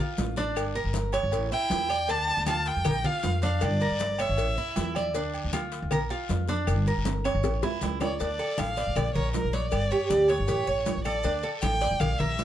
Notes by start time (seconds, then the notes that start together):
0.00 F4
0.18 A1, cowbell, high conga, low timbale, short guiro, maracas
0.36 D4, cowbell, high conga, short guiro, maracas
0.55 G1, cowbell, high conga, low agogo, long guiro, claves, maracas
0.75 A#4, high conga, low agogo, maracas
0.84 G1
0.94 cowbell, high conga, low timbale, short guiro, maracas
1.12 C#5, cowbell, high conga, low agogo, short guiro, claves, maracas
1.23 G1
1.31 A1, cowbell, high conga, low agogo, long guiro, maracas
1.52 E4 G5, high conga, maracas
1.70 E2, cowbell, high conga, low timbale, low agogo, short guiro, maracas
1.90 D5, low agogo, short guiro, claves, maracas
2.08 D2 D4 A5, cowbell, high conga, low agogo, long guiro, maracas
2.27 high conga, low agogo, maracas
2.37 D2
2.46 F4 A5, cowbell, high conga, low timbale, low agogo, short guiro, claves, maracas
2.66 G5, cowbell, high conga, short guiro, maracas
2.76 F2
2.85 A#1 A#4, cowbell, high conga, low conga, low agogo, long guiro, claves, maracas
3.04 F4 F5, high conga, low conga, low agogo, maracas
3.23 F2, cowbell, high conga, low timbale, short guiro, maracas
3.42 D4 F5, cowbell, high conga, short guiro, maracas
3.61 G1 D5, cowbell, low agogo, long guiro, claves, maracas
3.80 A#4, high conga, low agogo, maracas
3.91 G1
3.99 cowbell, high conga, low timbale, short guiro, maracas
4.19 C#5 E5, cowbell, high conga, low agogo, short guiro, claves, maracas
4.29 G1
4.37 A1, cowbell, high conga, low agogo, long guiro, maracas
4.58 E4, high conga, maracas
4.76 E2, cowbell, high conga, low timbale, low agogo, short guiro, maracas
4.95 D5, high conga, low agogo, short guiro, claves, maracas
5.14 D2 D4, cowbell, high conga, low agogo, long guiro, maracas
5.34 high conga, low agogo, maracas
5.44 D2
5.53 F4, cowbell, high conga, low timbale, low agogo, short guiro, claves, maracas
5.72 cowbell, high conga, short guiro, maracas
5.82 D2
5.91 A#1 A#4, cowbell, high conga, low conga, low agogo, long guiro, claves, maracas
6.10 F4, high conga, low agogo, maracas
6.29 F2, cowbell, high conga, low timbale, short guiro, maracas
6.48 D4, cowbell, high conga, short guiro, maracas
6.67 G1, cowbell, high conga, low agogo, long guiro, claves, maracas
6.86 A#4, high conga, low agogo, maracas
6.96 G1
7.05 cowbell, high conga, high timbale, short guiro, maracas
7.24 C#5, cowbell, high timbale, low agogo, short guiro, claves, maracas
7.35 G1
7.43 A1, cowbell, high bongo, high conga, low agogo, long guiro, maracas
7.63 E4, high bongo, high conga, low timbale, maracas
7.81 C#2, cowbell, high conga, low timbale, low agogo, short guiro, maracas
8.00 C#5 D5, low bongo, high conga, low timbale, low agogo, short guiro, claves, maracas
8.19 D2 D4 D5, cowbell, high conga, low agogo, long guiro, maracas
8.39 A4, high conga, low agogo, maracas
8.58 A1 F5, cowbell, high conga, low timbale, low agogo, short guiro, claves, maracas
8.77 D5, cowbell, high conga, short guiro, maracas
8.87 A1
8.96 A#1 D5, cowbell, high conga, low conga, low agogo, long guiro, claves, maracas
9.15 A#1 A#4 C#5, high conga, low conga, low agogo, maracas
9.34 A#4, cowbell, high conga, low timbale, short guiro, maracas
9.44 A#1
9.53 C#5 D5, cowbell, high conga, short guiro, maracas
9.71 G1 D5, cowbell, high conga, low agogo, long guiro, claves, maracas
9.91 G4 C#5, high conga, low agogo, maracas
10.10 D2 D5, cowbell, high conga, low timbale, short guiro, maracas
10.28 C#5, cowbell, high conga, low agogo, short guiro, claves, maracas
10.39 G1
10.48 A1 G4, cowbell, high conga, low agogo, long guiro, maracas
10.67 A1 C#5, high conga, maracas
10.86 cowbell, high conga, low timbale, low agogo, short guiro, maracas
10.96 A1
11.04 A4 D5, high conga, low agogo, short guiro, claves, maracas
11.23 D2 D4, cowbell, high conga, low agogo, long guiro, maracas
11.43 A4, high conga, low agogo, maracas
11.61 A1 G5, cowbell, high conga, low timbale, low agogo, short guiro, claves, maracas
11.81 D5, cowbell, high conga, short guiro, maracas
11.91 A1
11.99 A#1 F5, cowbell, high conga, low conga, low agogo, long guiro, claves, maracas
12.19 A#1 A#4 E5, high conga, low conga, low agogo, maracas
12.38 cowbell, high conga, low timbale, short guiro, maracas